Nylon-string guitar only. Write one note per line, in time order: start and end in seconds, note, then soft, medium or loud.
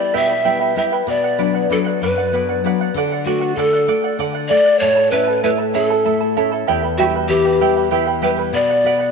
0.00 0.33 G3 soft
0.00 0.33 B3 soft
0.00 0.33 E4 soft
0.14 0.75 B2 medium
0.45 0.75 G3 soft
0.45 0.75 B3 soft
0.45 0.76 E4 soft
0.76 1.01 G3 soft
0.76 1.02 B3 soft
0.76 1.02 E4 soft
1.07 1.68 B2 medium
1.38 1.68 F#3 soft
1.38 1.69 B3 soft
1.38 1.69 D4 soft
1.69 2.19 F#3 soft
1.69 2.20 B3 soft
1.69 2.20 D4 soft
2.02 2.62 F#2 medium
2.32 2.62 F#3 soft
2.32 2.63 B3 soft
2.32 2.63 D4 soft
2.64 2.88 F#3 soft
2.64 2.89 B3 soft
2.64 2.89 D4 soft
2.94 3.56 D3 medium
3.25 3.56 A3 medium
3.57 3.87 D3 soft
3.88 4.18 A3 soft
4.19 4.49 D3 medium
4.50 4.80 A3 medium
4.81 6.63 A2 medium
5.11 5.42 C#4 medium
5.44 5.73 A3 soft
5.75 6.04 C#4 medium
6.05 6.35 A3 medium
6.37 6.67 C#4 medium
6.68 8.49 E2 medium
6.99 7.28 G3 medium
7.29 7.59 E3 medium
7.60 7.90 G3 medium
7.91 8.21 E3 medium
8.22 8.52 G3 medium
8.53 9.12 B2 medium
8.84 9.12 F#4 soft